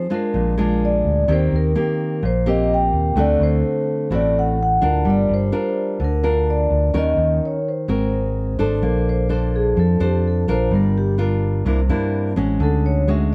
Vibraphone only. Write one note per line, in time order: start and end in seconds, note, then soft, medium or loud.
0.00 0.14 C5 medium
0.14 0.85 A#4 medium
0.85 1.32 D5 medium
1.33 1.55 C5 medium
1.56 2.27 A#4 medium
2.25 2.48 C5 loud
2.49 2.72 D#5 loud
2.74 3.20 G5 medium
3.20 3.43 D5 medium
3.43 4.15 C5 medium
4.15 4.37 D5 loud
4.39 4.61 F#5 medium
4.63 5.09 F#5 medium
5.10 5.32 D5 medium
5.34 6.04 C5 medium
6.04 6.51 A#4 medium
6.50 6.97 D5 medium
6.98 7.44 D#5 loud
7.45 7.68 C#5 medium
7.68 8.57 C5 medium
9.09 9.31 C5 medium
9.33 9.54 A#4 medium
9.56 9.78 G#4 medium
9.79 10.01 A4 medium
10.03 10.25 G4 medium
10.27 10.49 A4 medium
10.50 10.72 C5 medium
10.75 10.96 A#4 medium
10.98 11.11 G4 medium
12.63 12.85 A4 medium
12.86 13.08 C#5 medium
13.11 13.32 E5 medium